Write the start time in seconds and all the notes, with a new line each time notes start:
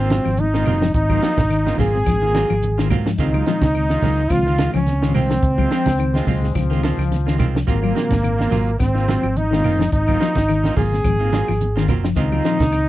Already playing: G#1 D#3 C4 F4
0.00 A#3 C4
0.10 A#2 D#3 F#3 G#3 C4 F4, snare, closed hi-hat, high conga
0.25 G#1 F3, snare, closed hi-hat, claves
0.37 G#3 C4 D#4, closed hi-hat, high conga
0.54 A#2 D#3 G#3 A#3 C4 F4, snare
0.66 F#1 F#3 A#3 C4 F4, open hi-hat, low conga, claves
0.81 F3, snare, closed hi-hat
0.94 G#1 D#4, kick, closed hi-hat, high conga
1.09 F#3 A#3 C4 F4, kick, high conga, claves
1.22 F3 F#3 A#3 C4 F4, snare, closed hi-hat
1.37 G#1, kick, snare, closed hi-hat, high conga, low conga
1.50 D#3, snare, closed hi-hat, claves
1.65 G#3 A#3 C4 F4, snare, closed hi-hat, high conga
1.77 G#1 F#3 G#3 A#3 C4 F4 G#4, muted clean electric guitar stroke, kick, snare, open hi-hat, high conga, low conga
1.82 G#4
1.95 A#2 D#3 G#3 C4
2.06 G#1 F3, kick, snare, closed hi-hat, claves
2.22 D#3 A#3 F4, muted clean electric guitar stroke, closed hi-hat
2.35 F#3 A#3 C4 F4, snare, closed hi-hat, high conga
2.50 G#1 F3, closed hi-hat, claves
2.63 closed hi-hat, high conga
2.78 D#3 A#3 C4 F4, snare, closed hi-hat
2.90 G#2 F#3 A#3 C4 F4, kick, closed hi-hat, low conga, claves
3.06 F3, snare
3.18 C#2 A#2 D#3 G#3 C4 D#4 F4, kick, snare, closed hi-hat
3.34 F#3 G#3 F4, high conga, claves
3.46 A#2 D#3 F3 G#3 C4 F4, snare, closed hi-hat
3.61 C#2, kick, snare, closed hi-hat, high conga, low conga
3.74 D#3, closed hi-hat, claves
3.90 G#3 F4, muted clean electric guitar stroke, snare, high conga
4.02 C#2 D#3 F#3 G#3 C4 F4, snare, open hi-hat, high conga, low conga
4.18 closed hi-hat
4.30 C#2 A#2 D#3 F3 G#3 C4 F4, kick, snare, closed hi-hat, claves
4.46 D#3 G#3 C4 F4, snare
4.58 A#2 D#3 G#3 C4 F4, snare, closed hi-hat, high conga
4.74 C#2 F3 C#4, snare, closed hi-hat, claves
4.86 G#3 C4, snare, closed hi-hat, high conga
5.02 A#2 D#3 G#3 C4 F4, snare
5.14 C2 D#3 G#3 C4 F4, open hi-hat, low conga, claves
5.30 F3, snare, closed hi-hat
5.43 C#2, kick, closed hi-hat
5.58 F#3 G#3 C4 F4, kick, high conga, claves
5.71 F3 G#3 C4 F4, muted clean electric guitar stroke, snare, closed hi-hat
5.86 C#2, kick, snare, closed hi-hat, high conga
5.99 D#3, closed hi-hat, claves
6.14 G#3 C4 F4, snare, closed hi-hat, high conga
6.27 C#2 F#3 G#3 C4 F4, muted clean electric guitar stroke, kick, open hi-hat, high conga, low conga
6.42 A#2 D#3 G#3 C4, snare
6.55 C#2 F3, kick, snare, closed hi-hat, claves
6.70 D#3 G#3 C4 F4, snare, closed hi-hat
6.83 D#3 G#3 C4 F4, snare, closed hi-hat, high conga
6.97 C#2 F3, snare, closed hi-hat, claves
7.12 snare, closed hi-hat, high conga
7.26 D#3 G#3 C4 F4, snare, closed hi-hat
7.38 C2 D#3 G#3 C4 F4, kick, closed hi-hat, low conga, claves
7.55 F3, snare
7.67 G#1 A#2 D#3 F#3 G#3 A#3 C4 F4, kick, closed hi-hat, high conga
7.82 F#3 A#3 C4 F4, claves
7.95 A#2 D#3 F3 F#3 G#3 A#3 C4 F4, snare, closed hi-hat
8.11 G#1, kick, snare, closed hi-hat, high conga, low conga
8.23 D#3, closed hi-hat, high conga, claves
8.38 A#3 C4 F4, snare, high conga
8.51 G#1 F#3 A#3 C4 F4, snare, open hi-hat, high conga, low conga
8.68 closed hi-hat
8.79 G#1 A#2 D#3 G#3 C4, muted clean electric guitar stroke, kick, snare, closed hi-hat, high conga, claves
8.95 D#3 A#3 C4 F4, snare
9.08 A#2 D#3 F#3 G#3 C4 F4, muted clean electric guitar stroke, snare, closed hi-hat, high conga
9.23 G#1 F3, closed hi-hat, claves
9.36 G#3 C4 D#4, closed hi-hat, high conga
9.51 A#2 D#3 G#3 A#3 C4 F4, snare
9.64 F#1 A#3 C4 F4, open hi-hat, low conga, claves
9.79 F3, snare, closed hi-hat
9.92 G#1 D#4, kick, closed hi-hat
10.07 F#3 A#3 C4 F4, kick, high conga, claves
10.19 F3 F#3 A#3 C4 F4, snare, closed hi-hat
10.35 G#1, kick, snare, closed hi-hat, high conga
10.49 D#3, snare, closed hi-hat, claves
10.63 G#3 A#3 C4 F4, snare, closed hi-hat, high conga
10.75 G#1 F#3 G#3 A#3 D#4 F4 G#4, muted clean electric guitar stroke, kick, open hi-hat, high conga, low conga
10.92 A#2 D#3 G#3 C4, snare
11.04 G#1 F3, kick, closed hi-hat, claves
11.19 D#3 A#3 C4 F4, closed hi-hat
11.32 F#3 A#3 C4 F4, snare, closed hi-hat, high conga
11.48 G#1 F3, snare, closed hi-hat, claves
11.61 closed hi-hat, high conga
11.76 D#3 A#3 C4 F4, snare, closed hi-hat
11.88 F#1 F#3 A#3 C4 F4, kick, closed hi-hat, low conga, claves
12.04 F3, snare
12.16 C#2 A#2 D#3 G#3 C4 D#4 F4, kick, snare, closed hi-hat
12.32 F#3 G#3 C4 F4, high conga, claves
12.44 A#2 D#3 F3 G#3 C4 F4, snare, closed hi-hat
12.60 C#2, kick, snare, closed hi-hat, high conga, low conga
12.72 muted clean electric guitar stroke, snare, closed hi-hat, claves